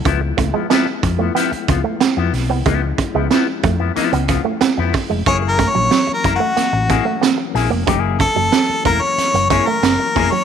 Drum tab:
HH |x-x-x-x-xxx-x-o-|x-x-x-x-xxx-x-o-|x-x-x-x-x-x-x-o-|x-x-x-x-xxx-x-o-|
SD |----o---o---o-o-|----o---o-o-o-o-|----o---o-o-o-o-|----o---o-o-o-o-|
BD |o-o---o---o-----|o-o---o---o---o-|o-o---o---o-----|o-o---o---o---o-|